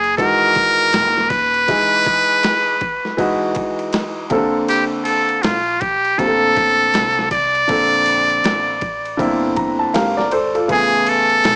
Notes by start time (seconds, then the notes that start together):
Already playing: F#1 G#4
0.04 ride
0.18 G#1 E3 G#3 D#4 F#4 A#4, kick, ride
0.55 kick, ride
0.93 D#1, snare, hi-hat pedal, ride
1.17 snare
1.29 B4, kick, ride
1.54 ride
1.68 E3 G#3 D#4 G#4, kick, ride
2.05 kick, ride
2.43 snare, hi-hat pedal, ride
2.81 kick, ride
3.05 snare
3.17 E3 G#3 D#4 F#4, kick, ride
3.55 kick, ride
3.79 ride
3.93 snare, hi-hat pedal, ride
4.30 C3 A#3 C4 A4, kick, ride
4.36 D3
4.68 G4, ride
5.05 A4, ride
5.29 ride
5.42 A#1 F4, snare, hi-hat pedal, ride
5.81 G4, kick, ride
6.05 ride
6.18 A1 D3 A#3 C4 G4 A4, kick, ride
6.27 A4
6.56 kick, ride
6.94 C2, snare, hi-hat pedal, ride
7.19 snare
7.31 D5, kick, ride
7.55 ride
7.68 A#1 D3 A#3 C4 A4, kick, ride
8.06 ride
8.30 ride
8.44 A1, snare, hi-hat pedal, ride
8.81 kick, ride
9.05 ride
9.17 G1 D3 A#3 C4 E4, kick, ride
9.56 A#5, kick, ride
9.79 A5
9.94 G#1 G4 A#4 F5, snare, hi-hat pedal, ride
10.17 A#4 D5, snare
10.31 A4 C5, ride
10.55 F4 A4, ride
10.68 A1 C#3 A3 B3 G#4 G#5, kick, ride
11.06 A4, ride
11.29 ride
11.44 B1, snare, hi-hat pedal, ride